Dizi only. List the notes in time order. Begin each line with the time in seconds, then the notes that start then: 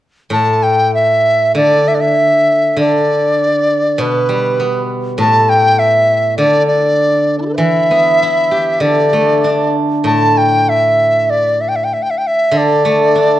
0.33 A5
0.63 G5
0.94 E5
1.56 D5
1.88 E5
1.95 D5
2.00 E5
2.80 D5
4.01 B4
5.20 A5
5.49 G5
5.79 E5
6.38 D5
6.67 D5
7.39 D4 E4
7.46 G4 A4
7.54 B4 E5
8.81 D5
10.06 A5
10.38 G5
10.69 E5
11.30 D5
11.61 E5
11.68 G5
11.76 E5
11.84 G5
11.93 E5
12.02 G5
12.10 E5
12.18 G5
12.27 E5
12.57 D5